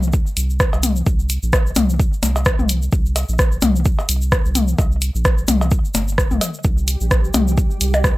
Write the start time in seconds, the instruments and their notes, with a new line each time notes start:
Already playing: analog synth bass C2
0.03 shaker
0.13 kick, shaker
0.27 shaker
0.37 analog synth bass C2, closed hi-hat, shaker
0.50 shaker
0.60 kick, cross-stick, shaker
0.73 analog synth bass C2, cowbell, shaker
0.83 closed hi-hat, high tom, shaker
0.96 shaker
1.06 analog synth bass C2, kick, shaker
1.19 shaker
1.29 closed hi-hat, shaker
1.43 analog synth bass A#1, shaker
1.53 kick, cross-stick, closed hi-hat, cowbell, shaker
1.66 shaker
1.76 analog synth bass C2, closed hi-hat, high tom, percussion blips, shaker
1.90 shaker
2.00 kick, shaker
2.13 shaker
2.23 analog synth bass C2, closed hi-hat, percussion blips, shaker
2.36 cowbell, shaker
2.45 kick, cross-stick, shaker
2.59 analog synth bass C2, high tom, shaker
2.69 closed hi-hat, shaker
2.82 shaker
2.92 analog synth bass C2, kick, shaker
3.06 shaker
3.16 closed hi-hat, cowbell, shaker
3.29 analog synth bass A#1, shaker
3.39 kick, cross-stick, closed hi-hat, shaker
3.52 shaker
3.62 analog synth bass C2, closed hi-hat, high tom, percussion blips, shaker
3.76 shaker
3.85 kick, shaker
3.99 cowbell, shaker
4.09 analog synth bass C2, closed hi-hat, shaker
4.22 shaker
4.32 kick, cross-stick, shaker
4.45 analog synth bass C2, shaker
4.55 closed hi-hat, high tom, shaker
4.68 shaker
4.78 analog synth bass C2, kick, cowbell, shaker
4.92 shaker
5.02 closed hi-hat, shaker
5.15 analog synth bass A#1, shaker
5.25 kick, cross-stick, closed hi-hat, shaker
5.38 shaker
5.48 analog synth bass C2, closed hi-hat, high tom, percussion blips, shaker
5.61 cowbell, shaker
5.71 kick, shaker
5.85 shaker
5.94 analog synth bass G1, closed hi-hat, percussion blips, shaker
6.08 shaker
6.18 kick, cross-stick, shaker
6.31 analog synth bass C2, high tom, shaker
6.41 closed hi-hat, cowbell, shaker
6.54 shaker
6.64 analog synth bass C2, synth texture G3 G4, kick, shaker
6.78 shaker
6.88 closed hi-hat, shaker
7.01 analog synth bass A#1, shaker
7.11 kick, cross-stick, closed hi-hat, shaker
7.24 shaker
7.34 analog synth bass C2, closed hi-hat, high tom, cowbell, percussion blips, shaker
7.48 shaker
7.57 kick, shaker
7.70 shaker
7.81 analog synth bass C2, closed hi-hat, shaker
7.94 percussion blips, shaker
8.04 kick, cross-stick, shaker